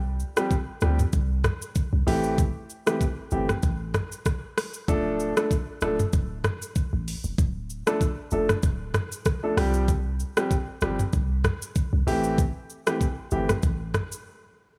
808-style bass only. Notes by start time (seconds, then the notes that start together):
Already playing: C2
0.82 D2
1.13 C2
1.93 C2
2.07 A1
3.32 G1
3.63 A1
4.88 D1
5.82 D1
6.13 D1
6.93 A1
7.24 E1
7.38 D1
8.32 F1
8.63 D1
9.57 C2
10.82 G1
11.13 C2
11.93 C2
12.07 A1
13.32 G1
13.63 A1